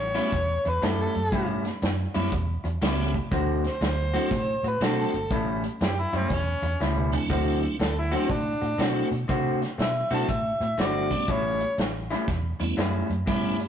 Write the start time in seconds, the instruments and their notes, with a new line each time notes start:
Already playing: fingered electric bass A1, harmonica C#5
0.14 clean electric guitar A2 G3 C#4 E4, tonewheel organ G3 A3 B3 C#4 F#4, snare, closed hi-hat
0.32 fingered electric bass E2, muted clean electric guitar stroke, kick, closed hi-hat
0.65 fingered electric bass E2, harmonica B4, muted clean electric guitar stroke, closed hi-hat
0.82 fingered electric bass F#2, clean electric guitar A2 G3 C#4 E4, harmonica A4, snare, closed hi-hat
1.01 harmonica A4
1.15 fingered electric bass F#2, muted clean electric guitar stroke, closed hi-hat
1.32 fingered electric bass G2, clean electric guitar A2 G3 C#4 E4, kick, closed hi-hat
1.65 muted clean electric guitar stroke, snare, closed hi-hat
1.82 fingered electric bass F#2, muted clean electric guitar stroke, snare, closed hi-hat
2.14 fingered electric bass F#2, clean electric guitar A2 G3 C#4 E4, tonewheel organ G3 A3 B3 C#4 E4, closed hi-hat
2.32 fingered electric bass E2, muted clean electric guitar stroke, kick, closed hi-hat
2.64 fingered electric bass E2, muted clean electric guitar stroke, closed hi-hat
2.81 fingered electric bass C#2, clean electric guitar A2 G3 C#4 E4, tonewheel organ G3 A3 B3 C#4 F#4, snare, closed hi-hat
3.14 muted clean electric guitar stroke, kick, closed hi-hat
3.31 fingered electric bass D2, clean electric guitar D3 A3 C4 F#4, kick, closed hi-hat
3.64 harmonica C5, muted clean electric guitar stroke, snare, closed hi-hat
3.81 fingered electric bass D2, muted clean electric guitar stroke, snare, closed hi-hat
4.14 clean electric guitar D3 A3 C4 F#4, tonewheel organ F#3 A3 C4 D4 E4, closed hi-hat
4.31 fingered electric bass A2, muted clean electric guitar stroke, kick, snare, closed hi-hat
4.63 fingered electric bass A2, muted clean electric guitar stroke, closed hi-hat
4.68 harmonica B4
4.81 fingered electric bass B2, clean electric guitar D3 A3 C4 F#4, tonewheel organ F#3 A3 C4 D4 F#4, harmonica A4, snare, closed hi-hat
5.01 harmonica A4
5.14 fingered electric bass G1, muted clean electric guitar stroke, closed hi-hat
5.30 fingered electric bass A1, clean electric guitar A2 G3 C#4 E4, kick, closed hi-hat
5.64 muted clean electric guitar stroke, closed hi-hat
5.81 fingered electric bass F#2, harmonica C4 E4 G4, muted clean electric guitar stroke, snare, closed hi-hat
6.00 harmonica E4
6.13 fingered electric bass F#2, clean electric guitar A2 G3 C#4 E4, harmonica C4, closed hi-hat
6.30 fingered electric bass E2, harmonica C#4, muted clean electric guitar stroke, kick, snare, closed hi-hat
6.62 fingered electric bass E2, muted clean electric guitar stroke, closed hi-hat
6.80 fingered electric bass C#2, clean electric guitar A2 G3 C#4 E4, snare
6.97 mid tom
7.12 tonewheel organ F#3 A3 C4 D4 E4, muted clean electric guitar stroke, floor tom
7.30 fingered electric bass D2, clean electric guitar D3 A3 C4 F#4, kick, closed hi-hat
7.62 muted clean electric guitar stroke, closed hi-hat
7.79 fingered electric bass D2, harmonica A4, muted clean electric guitar stroke, snare, closed hi-hat
7.99 harmonica E4
8.11 clean electric guitar D3 A3 C4 F#4, tonewheel organ F#3 A3 C4 D4 E4, harmonica C4, closed hi-hat
8.29 fingered electric bass A2, harmonica D4, muted clean electric guitar stroke, kick, closed hi-hat
8.61 fingered electric bass A2, muted clean electric guitar stroke, closed hi-hat
8.78 fingered electric bass B2, clean electric guitar D3 A3 C4 F#4, tonewheel organ F#3 A3 C4 D4 E4, snare, closed hi-hat
9.11 fingered electric bass B2, muted clean electric guitar stroke, closed hi-hat
9.28 fingered electric bass C3, clean electric guitar D3 A3 C4 F#4, kick, closed hi-hat
9.61 muted clean electric guitar stroke, snare, closed hi-hat
9.78 fingered electric bass B2, harmonica E5, muted clean electric guitar stroke, snare, closed hi-hat
10.10 fingered electric bass B2, clean electric guitar D3 A3 C4 F#4, tonewheel organ F#3 A3 C4 D4 E4, harmonica A5, snare, closed hi-hat
10.28 fingered electric bass A2, harmonica E5, muted clean electric guitar stroke, kick, closed hi-hat
10.60 fingered electric bass A2, muted clean electric guitar stroke, closed hi-hat
10.78 fingered electric bass G1, clean electric guitar D3 A3 C4 F#4, harmonica D5, snare, closed hi-hat
11.11 tonewheel organ G3 A3 B3 C#4 F#4, muted clean electric guitar stroke, kick, closed hi-hat
11.28 fingered electric bass A1, clean electric guitar A2 G3 C#4 E4, harmonica C#5, kick, closed hi-hat
11.61 muted clean electric guitar stroke, closed hi-hat
11.78 fingered electric bass A1, muted clean electric guitar stroke, snare, closed hi-hat
12.11 clean electric guitar A2 G3 C#4 E4, snare, closed hi-hat
12.27 fingered electric bass E2, muted clean electric guitar stroke, kick, snare, closed hi-hat
12.60 fingered electric bass E2, tonewheel organ G3 A3 B3 C#4 E4, muted clean electric guitar stroke, closed hi-hat
12.77 fingered electric bass F#2, clean electric guitar A2 G3 C#4 E4, snare, closed hi-hat
13.10 fingered electric bass F#2, muted clean electric guitar stroke, closed hi-hat
13.26 fingered electric bass G2, clean electric guitar A2 G3 C#4 E4, tonewheel organ G3 A3 B3 C#4 E4, kick, closed hi-hat
13.59 muted clean electric guitar stroke, closed hi-hat